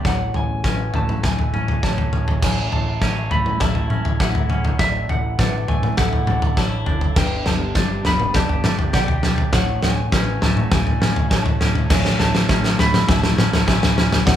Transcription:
0.04 A1 A2 C#3 A3 F#4 C#5 F#5, kick, snare, floor tom
0.34 A1 G#5, floor tom
0.64 A1 C#4 B4, kick, snare
0.94 A1 A3 A5, floor tom
1.09 mid tom
1.23 A1 G#5, kick, snare, floor tom
1.39 floor tom
1.54 A1 C#4, mid tom
1.68 floor tom
1.83 A1 C#5 A5, kick, snare
1.98 floor tom
2.12 A1 C#4, floor tom
2.28 floor tom
2.42 A1 A2 F#3 E4 C#5 G#5, kick, snare, floor tom, crash
2.72 A1 A5, floor tom
3.01 A1 C#4 E5, kick, snare
3.31 A1 A3 B5, floor tom
3.46 mid tom
3.60 A1 E4 E5 A5, kick, snare, floor tom
3.75 floor tom
3.90 A1 C#4, mid tom
4.05 floor tom
4.20 A1 E4 E5 F#5, kick, snare
4.35 floor tom
4.50 C#4, floor tom
4.65 floor tom
4.79 A1 A2 D3 A3 D5 E5, kick, snare, floor tom
5.09 A1 F#5, floor tom
5.39 A1 D4 B4, kick, snare, mid tom
5.68 A1 A3 G#5, floor tom
5.83 mid tom
5.97 A1 E4 A4 F#5, kick, snare, floor tom
6.13 floor tom
6.27 A1 D4, floor tom, mid tom
6.42 floor tom
6.57 A1 E4 C#5 A5, kick, snare
6.86 F#1 D4, floor tom
7.01 floor tom
7.16 G1 G2 G3 B3 G4 B4 G5, kick, snare, floor tom, crash
7.46 G1 A5, snare, floor tom
7.75 G1 D4 D5, kick, snare
8.05 G1 B3 B5, snare, floor tom
8.20 mid tom
8.34 G1 G4 D5 A5, kick, snare, floor tom
8.49 floor tom
8.64 G1 D4, snare, mid tom
8.79 floor tom
8.93 B1 G4 D5 G5, kick, snare
9.08 floor tom
9.23 D4, snare, floor tom
9.38 floor tom
9.53 A1 A2 C#3 A3 F#4 C#5 F#5, kick, snare, floor tom
9.83 A1 G#5, snare, floor tom
10.12 A1 C#4 B4, kick, snare
10.41 A1 A3 A5, snare, floor tom
10.57 mid tom
10.72 A1 G#5, kick, snare, floor tom
10.87 floor tom
11.01 A1 C#4, snare, mid tom
11.16 floor tom
11.30 A1 C#5 A5, kick, snare
11.46 floor tom
11.60 A1 C#4, snare, floor tom
11.75 floor tom
11.90 A1 A2 F#3 E4 C#5 G#5, kick, snare, floor tom, crash
12.05 snare
12.19 A1 A5, snare, floor tom
12.35 snare
12.49 A1 C#4 E5, kick, snare
12.64 snare
12.78 A1 A3 B5, snare, floor tom
12.94 snare, mid tom
13.08 A1 E4 E5 A5, kick, snare, floor tom
13.23 snare, floor tom
13.38 A1 C#4, snare, mid tom
13.53 snare, floor tom
13.67 A1 E4 E5 G#5, kick, snare
13.83 snare, floor tom
13.97 C#4, snare, floor tom
14.12 snare, floor tom
14.26 A1 A2 D3 F#3 A3 D5 F#5, kick, snare, floor tom

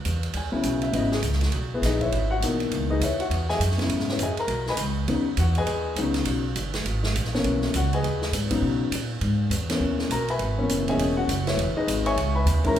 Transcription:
0.05 E2, hi-hat pedal, ride
0.23 ride
0.33 D#2 G#5, ride
0.52 C#3 F#3 B3 E4, muted upright bass stroke
0.63 B1, hi-hat pedal, ride
0.82 E5, ride
0.93 G#1 C#3 F#3 B3 E4 D#5, ride
1.12 G#4, snare
1.23 C#2, hi-hat pedal, ride
1.32 snare
1.41 snare, ride
1.52 B1, ride
1.74 B3 E4 G#4 B4
1.82 A#1 D#4 G#4 B4 D#5, snare, hi-hat pedal, ride
2.01 E4 B4 C#5 E5, kick, ride
2.11 G#1, ride
2.31 F#4 F#5
2.41 B1 B2 E3 A#3 D#4, hi-hat pedal, ride
2.60 ride
2.70 C#2, ride
2.90 D#4 G#4 B4 D#5
3.00 D#2 E4 C#5 E5, hi-hat pedal, ride
3.04 B4
3.20 F#4 F#5, ride
3.30 E2, ride
3.49 G#4 D#5 E5 G#5, snare
3.60 F#2, hi-hat pedal, ride
3.71 snare
3.78 C#3 F#3 B3 E4, snare, ride
3.88 G#2, ride
3.99 snare
4.09 E4 B4 C#5 E5, snare
4.19 F#2 G#5, hi-hat pedal, ride
4.23 G#4 D#5 E5
4.37 A#4 A#5, muted upright bass stroke, ride
4.47 B1, ride
4.66 B4 D#5 G#5 B5, snare
4.77 C#2, hi-hat pedal, ride
5.08 D#2 C#3 F#3 B3 D#4, ride
5.37 E2 F#4 F#5, hi-hat pedal, ride
5.55 G#4 B4 D#5 G#5, ride
5.66 D#2, ride
5.96 C#2 C#3 F#3 B3 D#4, hi-hat pedal, ride
6.14 snare, ride
6.25 B1, ride
6.56 G1, hi-hat pedal, ride
6.74 snare, ride
6.85 G#1, ride
7.03 snare
7.15 A#1, hi-hat pedal, ride
7.24 snare
7.33 B2 E3 A#3 C#4, snare
7.44 B1, ride
7.62 snare
7.74 C#2 F#4 F#5, hi-hat pedal, ride
7.93 G#4 B4 D#5 G#5, ride
8.03 D#2, ride
8.22 snare
8.32 G#2, hi-hat pedal, ride
8.51 C#3 F#3 B3 D#4, kick, ride
8.62 B2
8.91 A#2, hi-hat pedal, ride
9.21 G#2, ride
9.50 E2, hi-hat pedal, ride
9.69 B2 E3 A#3 C#4, snare, ride
9.80 D#2
9.99 snare
10.10 B1 A#4 A#5, hi-hat pedal, ride
10.28 B4 E5 G#5 B5, ride
10.39 G#1, ride
10.58 B2 E3 A#3 C#4
10.69 F#1, hi-hat pedal, ride
10.88 B2 E3 A#3 C#4 G#4 D#5 E5 G#5, ride
10.98 E1, ride
11.17 F#4 F#5
11.28 F#1, hi-hat pedal, ride
11.47 E4 B4 C#5 E5, snare, ride
11.57 E1, ride
11.75 D#4 G#4 B4 D#5, muted upright bass stroke
11.87 G#1, hi-hat pedal, ride
12.06 C#5 E5 G#5 C#6, ride
12.16 C#2, ride
12.35 B4 E5 G#5 B5
12.45 D#2, hi-hat pedal, ride
12.64 D#3 G#3 C#4 E4 A#4 A#5, kick, ride
12.75 E2, ride

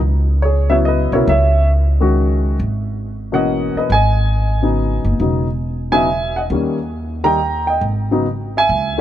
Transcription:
Already playing: C#2
0.42 G#4 C#5
0.69 C#3 F#3 B3 E4 C#5 E5
0.85 B4 D#5
1.12 B1 C#3 F#3 B3 E4 A#4 C#5
1.27 C#2 C#5 E5
2.00 D#3 G#3 C#4 F#4
2.59 G#1
3.32 B2 E3 A#3 C#4 D#5 F#5
3.75 B4 D#5, muted upright bass stroke
3.90 G#1 G#5
3.94 D#5
4.62 C#3 F#3 B3 D#4
5.04 F#1
5.20 E1 C#3 F#3 B3 D#4
5.92 C#3 F#3 B3 D#4 E5 G#5
6.36 D#5 F#5
6.50 D#2 D#3 G3 A#3 C#4
7.24 D#3 G3 A#3 D#4 G5 A#5
7.67 D#5 G5
7.81 G#1
8.11 C#3 F#3 B3 D#4
8.57 E5 G#5
8.69 C#2
8.98 D#3

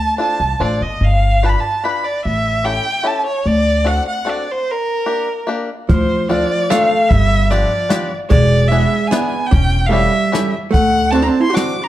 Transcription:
Already playing: D2 A5
0.18 D4 F4 A4 C5 A5
0.40 C2
0.60 A1 D4 F4 A4 C5 D5
0.81 G1 D#5
1.01 G1 F5
1.43 D4 F4 G4 B4 A5
1.49 B5
1.60 A5
1.84 D4 F4 G4 B4 B5
2.04 D5
2.25 A1 E5
2.64 C#4 E4 G4 A4 G5
3.03 C#4 E4 G4 A4 A5
3.26 C#5
3.46 D2 D5
3.84 C4 D4 F#4 A4 F#5
4.09 F#5
4.25 C4 D4 F#4 A4
4.30 D5
4.51 C5
4.71 A#4
5.06 A#3 D4 G4 A#4
5.47 A#3 D4 G4 A#4
5.89 D2 F3 C5, kick, closed hi-hat
6.29 F3 C4 D4 F4 A4 D5, closed hi-hat
6.70 A3 C4 D4 F4 A4 F5, snare, closed hi-hat
7.08 G1 G3 E5, kick, closed hi-hat
7.50 F3 B3 D4 F4 G4 D5, closed hi-hat
7.89 B3 D4 F4 G4, snare, closed hi-hat
8.30 E1 G#3 D5, kick, closed hi-hat
8.68 G#3 B3 G#4 E5, closed hi-hat
8.72 D4 E4
9.07 B3 G#5
9.12 B3 D4 E4 G#4, snare, closed hi-hat
9.47 G5
9.51 E1 C#4, kick, closed hi-hat
9.86 A3 E5 F5
9.90 G3 C#4 E4 G4 A4, closed hi-hat
10.32 C#4 E4 G4 A4, snare, closed hi-hat
10.71 A3 F#5, kick, closed hi-hat
10.75 D2
11.11 C4 D4 F#4 A5, closed hi-hat
11.15 A4
11.22 C4 D4 A#5
11.29 A5
11.40 E4 C6
11.50 C4 F#4
11.54 D4 F#4 A4 D6, snare, closed hi-hat
11.81 D4 A#5

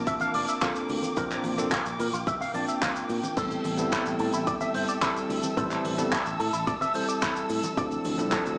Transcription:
Already playing: A#3 C4 D4 F4 A5 D6
0.07 E5, kick, closed hi-hat, cabasa, shaker
0.20 F5, closed hi-hat, high conga, shaker
0.34 F1 D5, open hi-hat, cabasa
0.48 E5, closed hi-hat, cabasa, shaker
0.61 A#3 C4 D4 F4 A4, kick, clap, closed hi-hat, high conga, cabasa, shaker
0.75 closed hi-hat, shaker
0.89 D2 G5, open hi-hat, cabasa
1.02 closed hi-hat, high conga, cabasa, shaker
1.17 A#1 A#3 C4 D4 F4 A#4 C5, kick, closed hi-hat, low conga, cabasa, shaker
1.31 clap, closed hi-hat, shaker
1.44 A#1, open hi-hat, high conga, cabasa
1.58 F1 A#3 C4 D4 F4 A4, closed hi-hat, cabasa, shaker
1.71 F4, kick, clap, closed hi-hat, cabasa, shaker
1.86 A#1, closed hi-hat, shaker
1.99 A#2 A#4, open hi-hat, high conga, cabasa
2.13 A#1 F4, closed hi-hat, cabasa, shaker
2.26 E5, kick, closed hi-hat, low conga, cabasa, shaker
2.40 F5, open hi-hat, high conga, shaker
2.54 A#1 A#3 C4 D4 F4 D5 A5, open hi-hat, cabasa
2.68 E5, closed hi-hat, cabasa, shaker
2.82 F4, kick, clap, closed hi-hat, high conga, cabasa, shaker
2.96 closed hi-hat, shaker
3.09 A#2, open hi-hat, cabasa
3.23 closed hi-hat, high conga, cabasa, shaker
3.37 A1 G3 B3 C4 E4 A4 E5 E6, kick, closed hi-hat, crash, low conga, cabasa, shaker
3.51 closed hi-hat, shaker
3.64 A1, open hi-hat, high conga, cabasa
3.77 G1 G3 B3 C4 E4 A4, closed hi-hat, cabasa, shaker
3.92 E4, kick, clap, closed hi-hat, cabasa, shaker
4.06 A1, closed hi-hat, shaker
4.19 A2 A4, open hi-hat, high conga, cabasa
4.32 A1 E4, closed hi-hat, cabasa, shaker
4.47 D5, kick, closed hi-hat, cabasa, shaker
4.61 E5, closed hi-hat, high conga, shaker
4.74 G1 C5, open hi-hat, cabasa
4.88 D5, closed hi-hat, cabasa, shaker
5.02 G3 C4 E4 A4, kick, clap, closed hi-hat, high conga, cabasa, shaker
5.16 closed hi-hat, shaker
5.30 D2, open hi-hat, cabasa
5.43 closed hi-hat, high conga, cabasa, shaker
5.57 A1 G3 C4 E4 A4 B4 C5 A5, kick, closed hi-hat, low conga, cabasa, shaker
5.71 clap, closed hi-hat, shaker
5.85 A1, open hi-hat, high conga, cabasa
5.98 G1 G3 B3 C4 E4 A4, closed hi-hat, cabasa, shaker
6.12 E4, kick, clap, closed hi-hat, cabasa, shaker
6.26 A1, closed hi-hat, shaker
6.40 A2 A4, open hi-hat, high conga, cabasa
6.53 A1 E4, closed hi-hat, cabasa, shaker
6.67 D5, kick, closed hi-hat, low conga, cabasa, shaker
6.81 E5, closed hi-hat, high conga, shaker
6.94 G3 C4 E4 A4 C5, open hi-hat, cabasa
7.08 D5, closed hi-hat, cabasa, shaker
7.22 E4, kick, clap, closed hi-hat, high conga, cabasa, shaker
7.36 closed hi-hat, shaker
7.49 A2, open hi-hat, cabasa
7.63 closed hi-hat, high conga, cabasa, shaker
7.77 D2 F3 C4 D4 E4 A4 D5, kick, closed hi-hat, low conga, cabasa, shaker
7.91 closed hi-hat, shaker
8.04 D2, open hi-hat, high conga, cabasa
8.17 C2 F3 C4 D4 E4 A4, closed hi-hat, cabasa, shaker
8.31 A4, kick, clap, closed hi-hat, cabasa, shaker
8.46 D2, closed hi-hat, shaker

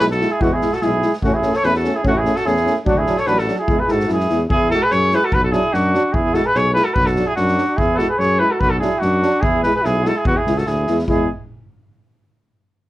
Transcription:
0.00 B1 G#3, snare
0.11 F#4 A4, snare
0.20 G#3 E4, snare
0.30 E4 G#4
0.41 E2 G#3 B3 E4 F#4, kick
0.53 E4 G#4
0.62 G#3 E4, snare
0.72 F#4 A4, snare
0.82 B1 G#3 E4 G#4, snare
1.02 G#3 E4, snare
1.13 snare
1.22 A1 A3 C#4 F#4, kick
1.33 E4 G#4
1.42 A3 C#4, snare
1.54 A4 C#5, snare
1.63 E2 A3 C#4 E4 B4, snare
1.75 F#4 A4, snare
1.84 A3 C#4, snare
1.95 E4 G#4
2.03 A1 A3 C#4 F#4, kick
2.13 E4
2.18 G#4
2.25 A3 C#4, snare
2.36 F#4 A4, snare
2.45 E2 A3 C#4 E4 G#4, snare
2.57 snare
2.65 A3 C#4, snare
2.86 D2 F#3 D4 F#4, kick
2.98 E4 G#4
3.07 F#3 D4, snare
3.17 A4 C#5, snare
3.27 A1 F#3 D4 F#4 B4, snare
3.39 F#4 A4, snare
3.46 F#3 D4, snare
3.59 E4 G#4
3.68 E2 G#3 E4, kick
3.79 G#4 B4
3.88 G#2 G#3 E4 A4, snare
3.93 F#4
4.00 snare
4.07 F#2 E4, snare
4.12 G#3 E4 G#4
4.20 snare
4.29 E2 G#3 E4, snare
4.49 E2 E4 G#4, kick
4.71 G#3 E4 F#4 A4, snare
4.83 G#4 B4
4.91 F#2 G#4 C#5, snare
5.11 G#3 E4 G#4 B4, snare
5.24 F#4 A4
5.32 B1 F#4 B4, kick
5.44 F#4 A4
5.52 F#3 D4 E4 G#4, snare
5.73 F#2 D4 F#4, snare
5.93 F#3 D4, snare
6.13 E2 E4 G#4, kick
6.34 G#3 E4 F#4 A4, snare
6.45 G#4 B4
6.53 B1 G#4 C#5, snare
6.73 G#3 E4 G#4 B4, snare
6.83 F#4 A4
6.94 B1 F#4 B4, kick
7.04 F#4 A4, snare
7.16 F#3 D4, snare
7.27 E4 G#4
7.36 F#2 D4 F#4, snare
7.48 snare
7.57 F#3 D4, snare
7.77 E2 E4 G#4, kick
7.95 E4 F#4 G#4 A4 B4
7.99 G#3, snare
8.08 G#4 B4
8.18 F#2 G#4 C#5, snare
8.39 G#3 E4 G#4 B4
8.51 F#4 A4
8.60 B1 F#4 B4, kick
8.70 F#4 A4
8.79 F#3 D4 E4 G#4, snare
8.99 F#2 D4 F#4, snare
9.23 F#3 D4, snare
9.41 E2 E4 G#4, kick
9.63 G#3 E4 G#4 B4, snare
9.74 G#4 B4
9.82 B1 E4 G#4, snare
10.04 G#3 E4 F#4 A4, snare
10.15 E4 G#4
10.25 E2 B3 F#4, kick
10.36 E4 G#4
10.46 C#2 G#3 E4, snare
10.57 F#4 A4, snare
10.67 D2 E4 G#4, snare
10.87 E2 G#3 E4, snare
10.99 snare
11.06 E2 G#3 E4 G#4, kick

